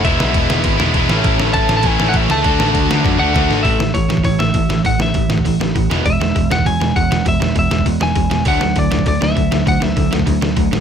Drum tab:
CC |x---x---x---x---|x---x---x---x---|x---x-----------|----------------|
HH |----------------|----------------|----------------|o---o---o---o---|
SD |--o---o---o---o-|--o---o---o---o-|--o---o-o---o-o-|--o---o---o---o-|
BD |o---o---o---o---|o---o---o---o---|o---o---o---o---|o---o--oo---o---|

CC |----------------|----------------|----------------|----------------|
HH |o---o---o---o---|o---o---o---o---|o---o---o---o---|o---o---o---o---|
SD |--o---o---o---o-|--o---o---o---o-|--o---o---o---o-|--o---o---o---o-|
BD |o---o--oo---o---|o---o--oo---o---|o---o--oo---o---|o---o--oo---o---|

CC |----------------|
HH |o---o---o---o---|
SD |--o---o---o---o-|
BD |o---o--oo---o---|